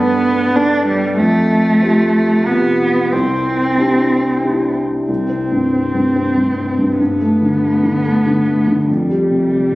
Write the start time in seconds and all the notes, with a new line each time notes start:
Already playing: G2 B3 D4 A4
0.55 B3 D4 A4
0.87 G3
1.18 F2 A3
1.82 C4 F4 G4
2.46 C3 B3 F4 G4
3.12 C2 C4
3.78 D4 E4 G4
4.44 D4 E4 G4
5.08 C2 C4
5.30 C4
5.51 G2
5.73 C4
5.94 G2
6.16 C4
6.37 G2
6.58 C4
6.78 G2
7.00 G2 B3
7.21 A3
7.41 D3
7.63 A3
7.83 D3
8.05 A3
8.26 D3
8.48 A3
8.68 D3
8.88 F2 G3
9.09 G3
9.31 C3
9.51 G3
9.72 C3